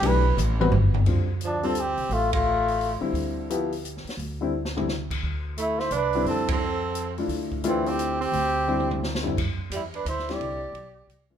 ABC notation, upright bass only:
X:1
M:3/4
L:1/8
Q:"Swing" 1/4=174
K:Em
V:1 name="Upright bass" clef=bass
B,,,2 A,,,2 G,,,2 | [K:C] D,,4- D,, C,, | A,,,4- A,,, z | D,,4- D,, z |
D,,6 | D,,4 C,,2 | F,,6 | D,,6 |
D,,6 | G,, z E,,2 D,,2 | C,,2 B,,,2 C,,2 |]